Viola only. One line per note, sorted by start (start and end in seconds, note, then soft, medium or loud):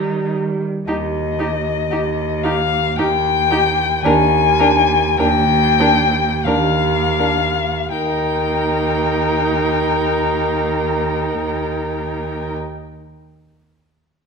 0.00 0.61 G3 medium
0.88 0.96 D#4 medium
1.39 1.47 D#4 medium
1.91 1.99 D#4 medium
2.44 2.52 D#4 medium
2.98 3.06 D#4 medium
3.51 3.59 D#4 medium
4.04 4.12 D4 medium
4.60 4.68 D4 medium
5.19 5.27 D4 medium
5.80 5.88 D4 medium
6.46 6.54 D4 medium
7.19 7.27 D4 medium
7.92 12.54 D#4 medium